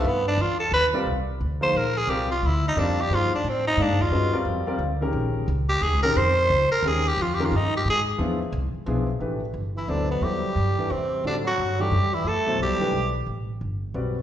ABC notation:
X:1
M:3/4
L:1/8
Q:"Swing" 1/4=177
K:G
V:1 name="Tenor saxophone"
B, D =F A B z | [K:Bbdor] z3 c B A | G F =E _E =D G | F =D C E D F- |
F2 z4 | z3 G A B | c3 B A G | (3F G F E G A z |
z6 | [K:Ador] z3 E D B, | G4 C2 | D F2 G2 E |
A2 G3 z | z6 |]
V:2 name="Grand piano"
z4 z [G,C=F_Bd] | [K:Bbdor] z3 [F,B,EAc] z2 | [G,CFB=d] z3 [G,CFBd] z | [F,B,EAc] z3 [B,EA=df] z |
[A,D^F=Be] [G,C=F_B=d]2 [G,CFBd] z [E,A,_DGB]- | [E,A,DGB]2 z3 [E,A,DGB] | z4 [E,A,DGB] z | z [E,A,DGB] z4 |
[F,=B,=D=E^G] z3 [F,B,DEG] z | [K:Ador] [E,A,DGB] z3 [F,B,EAc] z | [F,B,EAc] z2 [E,A,DGB] z2 | [D,G,CFA] z2 [E,A,DGA] z2 |
z [B,,F,EAc]2 [E,A,DGB] z2 | z4 [G,CFBd] z |]
V:3 name="Trombone" clef=bass
z6 | [K:Bbdor] z6 | z6 | z6 |
z6 | z6 | z6 | z6 |
z6 | [K:Ador] z3 E, D, B,, | G,4 C,2 | D, F,2 G,2 E, |
A,2 G,3 z | z6 |]
V:4 name="Upright bass" clef=bass
G,,2 E,,2 ^D,,2 | [K:Bbdor] C,,2 =D,,2 B,,,2 | C,,2 =D,,2 F,,2 | G,,2 =A,,2 (3_A,, G,, E,, |
G,,2 F,,2 =D,,2 | B,,,2 D,,2 (3E,, D,, B,,, | F,,2 D,, z E,,2 | F,,2 G,,2 A,,2 |
=E,,2 C,, z =B,,,2 | [K:Ador] A,,,2 G,,,2 D,,2 | E,,2 G,,2 E,,2 | A,,2 G,,2 F,,2 |
E,,2 C,, z B,,,2 | A,,,2 G,,,2 B,,,2 |]